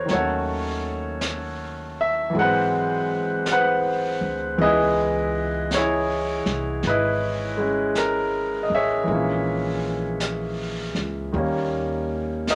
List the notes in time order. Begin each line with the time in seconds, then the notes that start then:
Already playing: C#4 A#4
0.05 D#3 F#3, brush sweep, snare
0.10 D#2 A3 F#4 A4 C#5
0.16 C#4
1.21 brush sweep, snare, hi-hat pedal
2.01 E5
2.30 E3 F#3, brush sweep
2.35 G#1 G#3
2.39 C4 B4 C5 F#5
3.46 brush sweep, snare, hi-hat pedal
3.52 B4 C5 F#5
4.21 D2
4.58 C#2 E3 G#3 B3 D#5, brush sweep
4.63 E4 G#4 B4
5.71 C#5, brush sweep, snare, hi-hat pedal
5.77 E4 G#4
6.46 C2, snare
6.83 G#1, brush sweep, snare
6.87 E4 B4 D#5
7.57 G#3 C#4
7.95 A#4, brush sweep, snare, hi-hat pedal
8.63 D#5
8.70 A1
8.74 G#4 C#5 E5
9.04 A#1 E3 G#3, brush sweep
9.11 A#3 C#4
10.20 brush sweep, snare, hi-hat pedal
10.95 C#2, snare
11.32 D#2 D#3 G3 A#3, brush sweep
11.38 C#4
12.47 G4 A#4 D#5, brush sweep, snare, hi-hat pedal